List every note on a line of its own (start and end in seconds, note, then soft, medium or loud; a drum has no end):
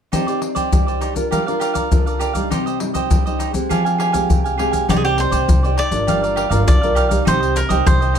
0.12 0.69 C4 medium
0.12 0.26 D#4 medium
0.12 0.23 D#4 soft
0.12 0.26 G4 medium
0.12 0.23 G4 soft
0.12 0.26 C5 medium
0.12 0.26 D5 medium
0.12 0.23 D5 medium
0.12 pandeiro medium
0.12 maracas medium
0.12 surdo medium
0.27 0.68 D#4 soft
0.27 0.68 G4 soft
0.27 0.40 G4 soft
0.27 0.40 C5 soft
0.27 0.41 D5 soft
0.27 0.68 D5 medium
0.27 pandeiro soft
0.27 maracas soft
0.41 muted cavaquinho stroke soft
0.41 pandeiro medium
0.55 0.85 G4 medium
0.55 0.85 C5 medium
0.55 0.85 D5 medium
0.55 pandeiro soft
0.55 maracas medium
0.55 surdo soft
0.73 1.29 G3 medium
0.73 1.12 D#4 soft
0.73 1.12 G4 soft
0.73 1.13 D5 medium
0.73 pandeiro medium
0.73 maracas medium
0.73 surdo medium
0.87 1.00 G4 soft
0.87 1.01 C5 soft
0.87 1.00 D5 soft
0.87 pandeiro soft
0.87 maracas soft
1.01 1.13 D#4 soft
1.01 1.14 G4 soft
1.01 1.14 C5 soft
1.01 1.14 D5 soft
1.01 pandeiro medium
1.01 maracas medium
1.14 1.41 D4 medium
1.14 1.42 F4 medium
1.14 1.42 A#4 medium
1.14 muted cavaquinho stroke soft
1.14 pandeiro soft
1.14 maracas medium
1.14 surdo soft
1.31 1.89 G3 medium
1.31 1.45 G4 medium
1.31 1.45 A#4 medium
1.31 1.46 D5 medium
1.31 1.45 F5 medium
1.31 pandeiro medium
1.31 maracas medium
1.31 surdo soft
1.47 1.87 D4 medium
1.47 1.87 F4 medium
1.47 1.59 A#4 soft
1.47 1.88 A#4 medium
1.47 1.60 D5 soft
1.47 1.60 F5 soft
1.47 pandeiro soft
1.47 maracas soft
1.60 1.74 G4 medium
1.60 1.74 A#4 medium
1.60 1.73 D5 medium
1.60 1.72 F5 medium
1.60 pandeiro medium
1.60 maracas medium
1.74 2.04 A#4 soft
1.74 2.04 D5 medium
1.74 2.04 F5 medium
1.74 pandeiro medium
1.74 maracas medium
1.74 surdo soft
1.92 2.48 D3 medium
1.92 2.32 D4 soft
1.92 2.32 F4 soft
1.92 2.32 A#4 soft
1.92 pandeiro medium
1.92 maracas medium
1.92 surdo medium
2.06 2.19 A#4 soft
2.06 2.19 D5 soft
2.06 2.20 F5 soft
2.06 pandeiro soft
2.06 maracas soft
2.19 2.34 G4 medium
2.19 2.34 A#4 medium
2.19 2.33 D5 medium
2.19 2.32 F5 medium
2.19 pandeiro medium
2.19 maracas medium
2.33 2.61 G3 medium
2.33 2.61 D#4 soft
2.33 2.61 G4 medium
2.33 2.49 A#4 soft
2.33 2.49 D5 soft
2.33 2.48 F5 soft
2.33 pandeiro soft
2.33 maracas medium
2.33 surdo soft
2.50 3.08 C3 medium
2.50 2.64 D#4 medium
2.50 2.65 G4 medium
2.50 2.65 C5 medium
2.50 2.65 D#5 medium
2.50 pandeiro medium
2.50 maracas medium
2.50 surdo soft
2.66 2.79 G4 soft
2.66 2.79 C5 soft
2.66 2.79 D#5 soft
2.66 pandeiro soft
2.66 maracas soft
2.80 3.09 G3 soft
2.80 3.09 D#4 soft
2.80 3.09 G4 medium
2.80 muted cavaquinho stroke soft
2.80 pandeiro medium
2.94 3.24 G4 medium
2.94 3.24 C5 medium
2.94 3.23 D#5 medium
2.94 pandeiro soft
2.94 maracas medium
2.94 surdo soft
3.11 3.25 G3 medium
3.11 pandeiro medium
3.11 maracas medium
3.11 surdo medium
3.26 3.51 G3 medium
3.26 3.51 D#4 medium
3.26 3.38 G4 soft
3.26 3.51 G4 medium
3.26 3.39 C5 soft
3.26 3.39 D#5 soft
3.26 pandeiro soft
3.26 maracas soft
3.39 3.52 D#4 soft
3.39 3.53 G4 soft
3.39 3.53 C5 soft
3.39 3.53 D#5 soft
3.39 pandeiro medium
3.39 maracas medium
3.53 4.09 G#3 medium
3.53 4.09 C4 medium
3.53 4.10 G4 medium
3.53 muted cavaquinho stroke soft
3.53 pandeiro soft
3.53 maracas medium
3.53 surdo soft
3.69 4.27 F3 medium
3.69 3.84 G4 medium
3.69 3.83 G#4 medium
3.69 3.84 F5 medium
3.69 3.84 G#5 medium
3.69 pandeiro medium
3.69 maracas medium
3.69 surdo medium
3.85 3.98 G4 soft
3.85 3.98 F5 soft
3.85 3.98 G#5 soft
3.85 pandeiro soft
3.85 maracas soft
3.98 4.13 G4 medium
3.98 4.13 G#4 medium
3.98 4.12 F5 medium
3.98 4.11 G#5 medium
3.98 pandeiro medium
4.12 4.54 G#3 medium
4.12 4.54 C4 medium
4.12 4.54 G4 medium
4.12 4.43 G4 soft
4.12 4.42 F5 medium
4.12 4.42 G#5 medium
4.12 pandeiro medium
4.12 maracas medium
4.12 surdo soft
4.29 4.86 C3 medium
4.29 pandeiro medium
4.29 maracas medium
4.29 surdo medium
4.44 4.57 G4 soft
4.44 4.58 F5 soft
4.44 4.58 G#5 soft
4.44 pandeiro soft
4.44 maracas soft
4.58 4.84 G#3 soft
4.58 4.84 C4 medium
4.58 4.73 G4 medium
4.58 4.85 G4 medium
4.58 4.72 G#4 medium
4.58 4.71 F5 medium
4.58 4.70 G#5 medium
4.58 pandeiro medium
4.71 4.88 G4 soft
4.71 4.87 F5 soft
4.71 4.87 G#5 soft
4.71 pandeiro soft
4.71 maracas medium
4.71 surdo soft
4.88 5.27 C2 medium
4.88 5.46 C4 medium
4.88 5.02 D#4 medium
4.88 5.07 D#4 medium
4.88 5.03 G4 medium
4.88 5.07 G4 medium
4.88 4.93 G4 medium
4.88 5.03 C5 medium
4.88 5.03 D5 medium
4.88 5.07 D5 medium
4.88 pandeiro medium
4.88 maracas medium
4.88 surdo medium
4.96 5.03 G#4 medium
5.04 5.18 G4 medium
5.04 5.17 G4 soft
5.04 5.17 C5 soft
5.04 5.18 D5 soft
5.04 pandeiro soft
5.04 maracas soft
5.18 5.47 D#4 soft
5.18 5.47 G4 medium
5.18 5.78 C5 medium
5.18 5.47 D5 medium
5.18 pandeiro medium
5.31 5.45 C2 medium
5.31 5.62 G4 medium
5.31 5.62 C5 medium
5.31 5.61 D5 medium
5.31 pandeiro medium
5.31 maracas medium
5.31 surdo soft
5.48 5.74 C2 medium
5.48 6.05 G3 medium
5.48 pandeiro medium
5.48 maracas medium
5.48 surdo loud
5.63 5.89 D#4 medium
5.63 5.76 G4 soft
5.63 5.89 G4 medium
5.63 5.76 C5 soft
5.63 5.77 D5 soft
5.63 5.90 D5 medium
5.63 pandeiro soft
5.63 maracas soft
5.76 5.90 D#4 soft
5.76 5.90 G4 soft
5.76 5.91 C5 soft
5.76 5.91 D5 soft
5.76 6.64 D5 medium
5.76 pandeiro medium
5.91 6.08 G#1 medium
5.91 6.47 D4 medium
5.91 6.47 F4 medium
5.91 6.48 A#4 medium
5.91 muted cavaquinho stroke soft
5.91 pandeiro medium
5.91 maracas medium
5.91 surdo soft
6.07 6.46 G1 medium
6.07 6.65 G3 medium
6.07 6.21 G4 medium
6.07 6.21 A#4 medium
6.07 6.22 D5 medium
6.07 6.21 F5 medium
6.07 pandeiro medium
6.07 maracas medium
6.07 surdo medium
6.22 6.35 A#4 soft
6.22 6.36 D5 soft
6.22 6.36 F5 soft
6.22 pandeiro soft
6.22 maracas soft
6.36 6.50 G4 medium
6.36 6.50 A#4 medium
6.36 6.49 D5 medium
6.36 6.48 F5 medium
6.36 pandeiro medium
6.50 6.64 G1 medium
6.50 6.77 D4 medium
6.50 6.77 F4 medium
6.50 6.80 A#4 soft
6.50 6.77 A#4 medium
6.50 6.80 D5 medium
6.50 6.80 F5 medium
6.50 pandeiro medium
6.50 maracas medium
6.50 surdo soft
6.68 7.18 B1 medium
6.68 7.24 D3 soft
6.68 7.23 D5 medium
6.68 pandeiro medium
6.68 maracas medium
6.68 surdo medium
6.81 7.08 D4 medium
6.81 7.08 F4 medium
6.81 6.95 A#4 soft
6.81 7.08 A#4 medium
6.81 6.95 D5 soft
6.81 6.95 F5 soft
6.81 pandeiro soft
6.81 maracas soft
6.95 7.10 G4 medium
6.95 7.09 A#4 medium
6.95 7.08 D5 medium
6.95 7.08 F5 medium
6.95 pandeiro medium
6.95 maracas medium
7.09 7.51 G3 medium
7.09 7.51 D#4 medium
7.09 7.52 G4 medium
7.09 7.25 A#4 soft
7.09 7.24 D5 soft
7.09 7.24 F5 soft
7.09 pandeiro medium
7.09 maracas medium
7.09 surdo soft
7.25 7.65 C2 medium
7.25 7.83 C3 soft
7.25 7.40 D#4 medium
7.25 7.40 G4 medium
7.25 7.40 C5 medium
7.25 7.58 C5 medium
7.25 7.39 D#5 medium
7.25 pandeiro medium
7.25 maracas medium
7.25 surdo medium
7.40 7.54 G4 soft
7.40 7.54 C5 soft
7.40 7.55 D#5 soft
7.40 pandeiro soft
7.40 maracas soft
7.55 7.87 A#4 medium
7.55 muted cavaquinho stroke soft
7.55 pandeiro medium
7.55 maracas medium
7.69 7.83 C2 medium
7.69 7.85 G3 medium
7.69 8.11 D#4 medium
7.69 8.00 G4 medium
7.69 8.11 G4 medium
7.69 7.99 C5 medium
7.69 7.99 D#5 medium
7.69 pandeiro medium
7.69 maracas medium
7.69 surdo soft
7.86 8.12 C2 medium
7.86 8.15 G3 medium
7.86 8.19 C5 medium
7.86 pandeiro medium
7.86 maracas medium
7.86 surdo medium
8.01 8.13 G4 soft
8.01 8.13 C5 soft
8.01 8.15 D#5 soft
8.01 pandeiro soft
8.01 maracas soft
8.13 8.19 G3 medium
8.13 8.19 D#4 soft
8.13 8.19 G4 medium
8.13 8.19 C5 soft
8.13 8.19 D#5 medium
8.13 pandeiro medium
8.13 maracas medium